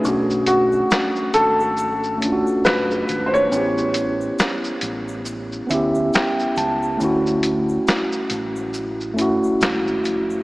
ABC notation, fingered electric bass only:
X:1
M:4/4
L:1/16
Q:"Swing 16ths" 1/4=69
K:Bm
V:1 name="Fingered electric bass" clef=bass
B,,,4 z2 ^G,,,4- G,,, z F,,,2 G,,,2 | A,,,4 z2 A,,,4 D,,2 z2 C,,2 | D,,4 z2 A,,,4- A,,, z ^G,,,2 ^E,,,2 |]